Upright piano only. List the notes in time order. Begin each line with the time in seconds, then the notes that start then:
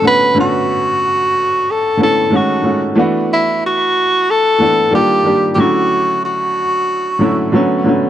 Already playing: D3 A3 B3 C#4 A4
0.02 D3 A3 B3 C#4 F#4
0.35 D3 A3 B3 C#4
0.39 F#4
1.97 D3 A3 B3 C#4
2.01 E4
2.30 D#3 G#3 A3 C#4 F#4
2.62 D#3 G#3 A3 C#4
2.66 F#4
2.95 E3 A3 B3 D4
2.99 F#4
4.58 E3 A3 B3 D4
4.62 E4
4.90 D#3 G3 A#3 D4 F4
5.23 D#3 G3 A#3 D4
5.27 G4
5.56 D3 F#3 A3 C#4 E4
7.19 D3 F#3 A3 C#4 E4
7.52 D3 F#3 A3 B3 C#4
7.84 D3 F#3 A3 B3 C#4